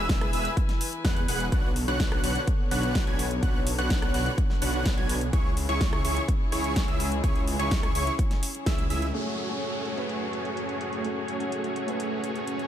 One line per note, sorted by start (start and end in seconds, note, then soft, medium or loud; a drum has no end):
0.00 0.31 E1 loud
0.00 1.49 E3 medium
0.00 1.49 E4 medium
0.00 0.30 G#4 loud
0.00 0.30 B4 medium
0.00 1.49 B4 medium
0.00 0.30 E5 loud
0.00 1.48 G#5 loud
0.00 0.30 E6 loud
0.09 kick loud
0.09 snare loud
0.09 closed hi-hat medium
0.21 cross-stick medium
0.21 closed hi-hat soft
0.33 0.48 E1 loud
0.33 0.50 G#4 loud
0.33 0.50 B4 medium
0.33 0.50 E5 loud
0.33 0.50 E6 loud
0.33 open hi-hat loud
0.45 closed hi-hat medium
0.57 kick loud
0.57 closed hi-hat medium
0.69 snare soft
0.69 closed hi-hat soft
0.81 open hi-hat loud
0.93 closed hi-hat medium
1.04 1.26 E2 loud
1.04 1.22 G#4 medium
1.04 1.22 B4 medium
1.04 1.22 F#5 loud
1.04 1.22 F#6 medium
1.04 kick loud
1.04 snare loud
1.04 closed hi-hat medium
1.16 closed hi-hat soft
1.28 1.50 E1 medium
1.28 1.45 G#4 medium
1.28 1.45 B4 medium
1.28 1.45 F#5 medium
1.28 1.45 F#6 medium
1.28 open hi-hat loud
1.40 closed hi-hat medium
1.52 1.86 B1 loud
1.52 5.30 D3 medium
1.52 5.29 B3 medium
1.52 1.69 D4 medium
1.52 1.69 F#4 medium
1.52 1.69 B4 medium
1.52 1.69 C#5 medium
1.52 5.29 C#5 medium
1.52 1.69 F#5 medium
1.52 1.69 F#6 medium
1.52 kick loud
1.52 closed hi-hat medium
1.76 open hi-hat loud
1.88 2.21 B1 loud
1.88 2.21 D4 loud
1.88 2.21 F#4 medium
1.88 2.21 B4 medium
1.88 2.21 C#5 medium
1.88 2.21 F#5 loud
1.88 2.21 F#6 loud
1.88 closed hi-hat medium
2.00 kick loud
2.00 snare loud
2.00 closed hi-hat medium
2.12 cross-stick medium
2.12 closed hi-hat soft
2.24 2.38 B1 loud
2.24 2.41 D4 loud
2.24 2.41 F#4 medium
2.24 2.41 B4 medium
2.24 2.41 C#5 medium
2.24 2.41 F#5 loud
2.24 2.41 F#6 loud
2.24 open hi-hat medium
2.36 closed hi-hat medium
2.47 kick loud
2.47 closed hi-hat medium
2.71 3.05 B1 loud
2.71 3.04 D4 medium
2.71 3.04 F#4 medium
2.71 3.04 B4 medium
2.71 3.04 C#5 medium
2.71 3.04 F#5 medium
2.71 3.04 F#6 medium
2.71 open hi-hat loud
2.83 closed hi-hat soft
2.95 kick loud
2.95 snare loud
2.95 closed hi-hat medium
3.07 3.40 B1 medium
3.07 3.24 D4 medium
3.07 3.24 F#4 medium
3.07 3.24 B4 medium
3.07 3.24 C#5 medium
3.07 3.24 G#5 medium
3.07 3.24 G#6 medium
3.07 closed hi-hat soft
3.19 open hi-hat loud
3.31 closed hi-hat soft
3.43 3.76 B1 medium
3.43 3.60 D4 medium
3.43 3.60 F#4 medium
3.43 3.60 B4 medium
3.43 3.60 C#5 medium
3.43 3.60 F#5 medium
3.43 3.60 F#6 medium
3.43 kick loud
3.43 closed hi-hat medium
3.67 open hi-hat loud
3.78 4.12 B1 medium
3.78 4.11 D4 loud
3.78 4.11 F#4 medium
3.78 4.11 B4 medium
3.78 4.11 C#5 medium
3.78 4.11 F#5 loud
3.78 4.11 F#6 loud
3.78 closed hi-hat medium
3.90 kick loud
3.90 snare loud
3.90 closed hi-hat medium
4.02 cross-stick medium
4.02 closed hi-hat soft
4.14 4.29 B1 loud
4.14 4.31 D4 loud
4.14 4.31 F#4 medium
4.14 4.31 B4 medium
4.14 4.31 C#5 medium
4.14 4.31 F#5 loud
4.14 4.31 F#6 loud
4.14 open hi-hat medium
4.26 closed hi-hat medium
4.38 kick loud
4.38 closed hi-hat medium
4.50 snare soft
4.62 4.95 B1 loud
4.62 4.95 D4 medium
4.62 4.95 F#4 medium
4.62 4.95 B4 medium
4.62 4.95 C#5 medium
4.62 4.95 F#5 medium
4.62 4.95 F#6 medium
4.62 open hi-hat loud
4.74 closed hi-hat soft
4.86 kick loud
4.86 snare loud
4.86 closed hi-hat medium
4.97 5.31 B1 medium
4.97 5.15 D4 medium
4.97 5.15 F#4 medium
4.97 5.15 B4 medium
4.97 5.14 C#5 medium
4.97 5.15 G#5 medium
4.97 5.14 G#6 medium
4.97 closed hi-hat soft
5.09 open hi-hat medium
5.21 closed hi-hat medium
5.33 5.66 C#2 loud
5.33 9.10 C#3 medium
5.33 9.10 C#4 medium
5.33 5.50 E4 medium
5.33 9.10 E4 medium
5.33 9.10 G#4 medium
5.33 5.50 G#4 medium
5.33 5.50 C#5 medium
5.33 5.50 C#6 medium
5.33 kick loud
5.33 closed hi-hat medium
5.57 open hi-hat loud
5.69 6.02 C#2 medium
5.69 6.02 E4 loud
5.69 6.02 G#4 medium
5.69 6.02 C#5 loud
5.69 6.02 C#6 loud
5.69 closed hi-hat medium
5.81 kick loud
5.81 snare loud
5.81 closed hi-hat medium
5.93 cross-stick medium
5.93 closed hi-hat soft
6.05 6.19 C#2 loud
6.05 6.22 E4 loud
6.05 6.22 G#4 medium
6.05 6.22 C#5 loud
6.05 6.22 C#6 loud
6.05 open hi-hat medium
6.17 closed hi-hat medium
6.28 kick loud
6.28 closed hi-hat medium
6.52 6.86 C#2 medium
6.52 6.85 E4 medium
6.52 6.85 G#4 medium
6.52 6.85 C#5 medium
6.52 6.85 C#6 medium
6.52 open hi-hat loud
6.64 closed hi-hat medium
6.76 kick loud
6.76 snare loud
6.76 closed hi-hat medium
6.88 7.21 C#2 loud
6.88 7.05 E4 medium
6.88 7.05 G#4 medium
6.88 7.05 E5 medium
6.88 7.05 E6 medium
6.88 closed hi-hat soft
7.00 open hi-hat medium
7.12 closed hi-hat medium
7.24 7.57 C#2 loud
7.24 7.41 E4 medium
7.24 7.41 G#4 medium
7.24 7.41 C#5 medium
7.24 7.41 C#6 medium
7.24 kick loud
7.24 closed hi-hat medium
7.36 closed hi-hat soft
7.48 open hi-hat loud
7.59 7.93 C#2 medium
7.59 7.92 E4 loud
7.59 7.92 G#4 medium
7.59 7.92 C#5 loud
7.59 7.92 C#6 loud
7.59 closed hi-hat medium
7.71 kick loud
7.71 snare loud
7.71 closed hi-hat medium
7.83 cross-stick medium
7.83 closed hi-hat soft
7.95 8.10 C#2 medium
7.95 8.12 E4 loud
7.95 8.12 G#4 medium
7.95 8.12 C#5 loud
7.95 8.12 C#6 loud
7.95 open hi-hat medium
8.07 closed hi-hat medium
8.19 kick loud
8.19 closed hi-hat medium
8.31 snare soft
8.31 closed hi-hat soft
8.43 open hi-hat loud
8.55 closed hi-hat medium
8.66 8.88 C#2 loud
8.66 8.84 E4 medium
8.66 8.84 G#4 medium
8.66 8.84 E5 medium
8.66 8.84 E6 medium
8.66 kick loud
8.66 snare loud
8.66 closed hi-hat medium
8.78 closed hi-hat soft
8.90 9.12 C#2 medium
8.90 9.07 E4 medium
8.90 9.07 G#4 medium
8.90 9.07 E5 medium
8.90 9.07 E6 medium
8.90 open hi-hat medium
9.02 closed hi-hat medium
9.14 12.67 F#2 medium
9.14 12.67 F#3 medium
9.14 9.47 A3 medium
9.14 12.67 A3 medium
9.14 9.47 C#4 medium
9.14 12.67 C#4 medium
9.14 12.67 F#4 medium
9.14 9.47 F#4 medium
9.14 12.67 G#4 medium
9.14 9.47 G#4 medium
9.14 12.67 C#5 medium
9.14 closed hi-hat medium
9.14 crash medium
9.14 downlifter medium
9.38 closed hi-hat medium
9.49 9.94 A3 medium
9.49 9.95 C#4 medium
9.49 9.95 F#4 medium
9.49 closed hi-hat soft
9.62 closed hi-hat medium
9.74 closed hi-hat soft
9.85 closed hi-hat medium
9.96 11.01 A3 medium
9.96 11.02 C#4 medium
9.96 11.02 F#4 medium
9.96 11.02 B4 medium
9.96 closed hi-hat medium
10.09 closed hi-hat medium
10.33 closed hi-hat medium
10.45 closed hi-hat soft
10.57 closed hi-hat medium
10.69 closed hi-hat soft
10.81 closed hi-hat medium
10.93 closed hi-hat soft
11.04 11.37 A3 medium
11.04 11.37 C#4 medium
11.04 11.38 F#4 medium
11.04 11.38 G#4 medium
11.04 closed hi-hat medium
11.28 closed hi-hat medium
11.40 11.85 A3 medium
11.40 11.85 C#4 medium
11.40 11.85 F#4 medium
11.40 closed hi-hat medium
11.52 closed hi-hat medium
11.64 closed hi-hat soft
11.76 closed hi-hat medium
11.87 12.67 A3 medium
11.87 12.67 C#4 medium
11.87 12.67 F#4 medium
11.87 12.67 B4 medium
11.87 closed hi-hat soft
12.00 closed hi-hat medium
12.24 closed hi-hat medium
12.36 closed hi-hat soft
12.47 closed hi-hat medium
12.59 closed hi-hat soft